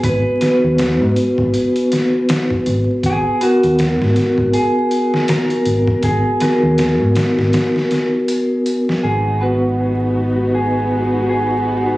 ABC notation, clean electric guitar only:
X:1
M:4/4
L:1/8
Q:"Swing 16ths" 1/4=80
K:G#m
V:1 name="Clean electric guitar"
B4 z4 | G F3 G2 A2 | G4 z4 | G F3 G2 G2 |]